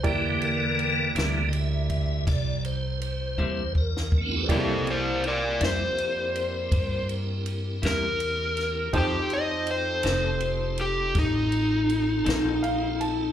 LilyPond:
<<
  \new Staff \with { instrumentName = "Electric slide guitar" } { \time 12/8 \key c \mixolydian \tempo 4. = 54 r1. | <c' a'>8 <e' c''>8 <bes' d''>8 c''2 r4 bes'4. | g'8 ees''8 c''4. g'8 ees'2. | }
  \new Staff \with { instrumentName = "Upright piano" } { \time 12/8 \key c \mixolydian << { r1. | r1. | r1 r4 f''8 a''8 | } \\ { <e' g' bes' d''>1. | <bes e' g' d''>1. | <ees' g' a' c''>1. | } >> }
  \new Staff \with { instrumentName = "Tonewheel organ" } { \time 12/8 \key c \mixolydian g'8 bes'4 r8 <ees'' e''>4 d''8 c''8 c''4 bes'4 | <des f a b c' d' e' f' g' a' b' c'' d''>8 <c' e' g' bes'>1~ <c' e' g' bes'>4. | <c' ees' f' a'>1. | }
  \new Staff \with { instrumentName = "Tonewheel organ" } { \clef bass \time 12/8 \key c \mixolydian <d e bes>4. <d e bes>8 r1 | r1. | r1. | }
  \new Staff \with { instrumentName = "Clean electric guitar" } { \time 12/8 \key c \mixolydian r4. <c g bes e'>8 r2 r8 <c g bes e'>8 r4 | <c g bes e'>8 r4 <c g bes e'>8 r2 r8 <c g bes e'>8 r4 | <f c' ees' a'>8 r4 <f c' ees' a'>8 r2 r8 <f c' ees' a'>8 r4 | }
  \new Staff \with { instrumentName = "Upright bass" } { \clef bass \time 12/8 \key c \mixolydian e,4. d,4. c,4. e,4. | c,4. f,4. g,4. e,4. | f,4. f,,4. a,,4. bes,,4. | }
  \new DrumStaff \with { instrumentName = "Drums" } \drummode { \time 12/8 <bd cymr>8 cymr8 cymr8 <cymr sn>8 cymr8 <bd cymr>8 <bd cymr sn>8 cymr8 cymr8 bd8 bd16 sn16 bd8 | <bd cymr>8 cymr8 cymr8 <cymr sn>8 cymr8 cymr8 <bd cymr>8 cymr8 cymr8 <cymr sn>8 cymr8 <cymr sn>8 | <bd cymr>8 cymr8 cymr8 <cymr sn>8 cymr8 cymr8 <bd cymr sn>8 cymr8 cymr8 <cymr sn>8 cymr8 cymr8 | }
>>